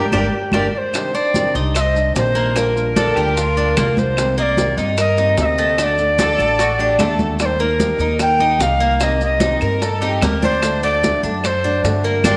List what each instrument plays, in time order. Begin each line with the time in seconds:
Already playing: recorder G4
0.12 upright bass G1, nylon-string guitar G3 A#3 D4, cuban tres D4 G4 A#4, high bongo, high conga, claves
0.52 upright bass G1, nylon-string guitar G3 A#3 D4, cuban tres D4 G4 A#4, high bongo, high conga, claves
0.74 recorder C5 D5
0.93 nylon-string guitar C3 D#3 G3 D4 G4, high bongo, high conga, claves, maracas
1.13 nylon-string guitar G3 D4 G4, cuban tres C4, recorder D5, high conga, maracas
1.34 nylon-string guitar C3 D#3 G3 D4 G4, high bongo, high conga, maracas
1.54 upright bass C2, nylon-string guitar G3 D4 G4, cuban tres D#4, high conga, maracas
1.75 cuban tres C5, recorder E5, muted nylon-string guitar stroke, high bongo, high conga, claves, maracas
1.80 recorder D#5
1.94 nylon-string guitar G3 D4 G4, high conga, maracas
2.14 upright bass A#1, nylon-string guitar C3 D#3 G3 D4 G4, recorder C5, high bongo, low bongo, high conga, maracas
2.35 cuban tres A#3, high conga, maracas
2.55 nylon-string guitar D3 G3 D4 F4, cuban tres A#3, recorder A#4, high bongo, high conga, claves, maracas
2.76 nylon-string guitar G3 D4 F4, high conga, maracas
2.96 nylon-string guitar D3 G3 D4 F4, cuban tres D4, violin section A4, high bongo, high conga, maracas
3.16 upright bass D2, nylon-string guitar G3 D4 F4, violin section G4, cuban tres A#4, high bongo, high conga, claves, maracas
3.37 violin section F4, muted nylon-string guitar stroke, high bongo, high conga, maracas
3.57 nylon-string guitar G3 D4 F4, cuban tres D4, high bongo, high conga, maracas
3.76 upright bass C2, nylon-string guitar D3 G3 D4 F4, cuban tres A#3, high bongo, low bongo, high conga, claves, maracas
3.97 recorder C5, high bongo, high conga, maracas
4.17 nylon-string guitar C3 D#3 A#3 C4 G4, high bongo, high conga, claves, maracas
4.37 cuban tres A#3, nylon-string guitar A#3 C4 G4, recorder D#5, high conga, maracas
4.42 recorder D5
4.57 nylon-string guitar C3 D#3 A#3 C4 G4, high bongo, high conga, maracas
4.77 upright bass G2, nylon-string guitar A#3 C4 G4, cuban tres D#4, high conga, maracas
4.98 cuban tres A#4, recorder D#5, muted nylon-string guitar stroke, high bongo, high conga, claves, maracas
5.17 nylon-string guitar A#3 C4 G4, cuban tres D#4, high conga, maracas
5.37 upright bass D2, nylon-string guitar C3 A#3 C4 G4, recorder E5, high bongo, low bongo, high conga, maracas
5.45 recorder D#5
5.58 cuban tres A3, high conga, maracas
5.78 nylon-string guitar D3 A3 D4 F#4, cuban tres A3, recorder D#5, high bongo, high conga, claves, maracas
5.83 recorder D5
5.98 nylon-string guitar A3 D4 F#4, high conga, maracas
6.18 nylon-string guitar D3 A3 D4 F#4, cuban tres D4, violin section A4, high bongo, high conga, maracas
6.38 upright bass A1, nylon-string guitar A3 D4 F#4, cuban tres A4, high bongo, high conga, claves, maracas
6.59 violin section F#4, muted nylon-string guitar stroke, high bongo, high conga, maracas
6.79 nylon-string guitar A3 D4 F#4, cuban tres D4, violin section G4, high bongo, high conga, maracas
6.98 upright bass D#2, nylon-string guitar D3 A3 D4 F#4, cuban tres A3, violin section A4, high bongo, low bongo, high conga, claves, maracas
7.19 high bongo, high conga, maracas
7.39 nylon-string guitar D#3 G3 A#3 D#4 G4, recorder D5, high bongo, high conga, claves, maracas
7.45 recorder C5
7.59 cuban tres A#3, nylon-string guitar A#3 D#4 G4, recorder A#4, high conga, maracas
7.79 nylon-string guitar D#3 G3 A#3 D#4 G4, high bongo, high conga, maracas
7.98 upright bass D#2, nylon-string guitar A#3 D#4 G4, cuban tres D#4, high conga, maracas
8.19 cuban tres A#4, recorder G5, muted nylon-string guitar stroke, high bongo, high conga, claves, maracas
8.39 nylon-string guitar A#3 D#4 G4, cuban tres D#4, high conga, maracas
8.59 upright bass C2, nylon-string guitar D#3 G3 A#3 D#4 G4, recorder F5, high bongo, low bongo, high conga, maracas
8.79 cuban tres A#3, high conga, maracas
8.99 nylon-string guitar C3 D#3 A#3 C4 G4, cuban tres A#3, recorder D#5, high bongo, high conga, claves, maracas
9.20 nylon-string guitar A#3 C4 G4, recorder D#5, high conga, maracas
9.40 nylon-string guitar C3 D#3 A#3 C4 G4, cuban tres D#4, high bongo, high conga, maracas
9.61 upright bass G2, nylon-string guitar A#3 C4 G4, violin section A#4, cuban tres A#4, high bongo, high conga, claves, maracas
9.81 violin section A4, muted nylon-string guitar stroke, high bongo, high conga, maracas
10.02 nylon-string guitar A#3 C4 G4, cuban tres D#4, violin section G4, high bongo, high conga, maracas
10.21 upright bass D2, nylon-string guitar C3 A#3 C4 G4, cuban tres A#3, high bongo, low bongo, high conga, claves, maracas
10.42 cuban tres D4, recorder C5, high bongo, high conga, maracas
10.62 nylon-string guitar D3 A3 D4 F#4, high bongo, high conga, claves, maracas
10.83 cuban tres A3, nylon-string guitar A3 D4 F#4, recorder D5, high conga, maracas
11.03 nylon-string guitar D3 A3 D4 F#4, high bongo, high conga, maracas
11.23 upright bass F#2, nylon-string guitar A3 D4 F#4, cuban tres D4, high conga, maracas
11.43 cuban tres A4, recorder C5 D5, muted nylon-string guitar stroke, high bongo, high conga, claves, maracas
11.64 nylon-string guitar A3 D4 F#4, cuban tres D4, high conga, maracas
11.84 upright bass G2, nylon-string guitar D3 A3 D4 F#4, high bongo, low bongo, high conga, maracas
12.03 cuban tres A#3, recorder A#4, high conga, maracas
12.24 upright bass G1, nylon-string guitar G3 A#3 D4, cuban tres D4 F4 G4, low bongo, high conga, claves, maracas